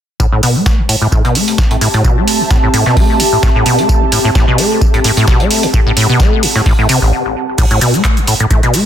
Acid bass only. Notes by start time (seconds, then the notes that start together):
0.20 A2
0.32 A2
0.43 B2
0.55 A3
0.78 A2
0.89 A2
1.02 A2
1.12 A2
1.25 B2
1.35 A3
1.58 A2
1.71 A2
1.81 A2
1.94 A2
2.05 B2
2.17 A3
2.40 A2
2.51 A2
2.63 A2
2.74 A2
2.86 B2
2.97 A3
3.20 A2
3.32 A2
3.43 A2
3.55 A2
3.66 B2
3.78 A3
4.02 A2
4.12 A2
4.25 A2
4.35 A2
4.48 B2
4.58 A3
4.81 A2
4.94 A2
5.04 A2
5.17 A2
5.28 B2
5.40 A3
5.63 A2
5.74 A2
5.86 A2
5.97 A2
6.09 B2
6.20 A3
6.43 A2
6.55 A2
6.66 A2
6.79 A2
6.89 C3
7.02 A1
7.58 A2
7.71 A2
7.81 B2
7.94 A3
8.17 A2
8.27 A2
8.40 A2
8.51 A2
8.63 B2
8.74 A3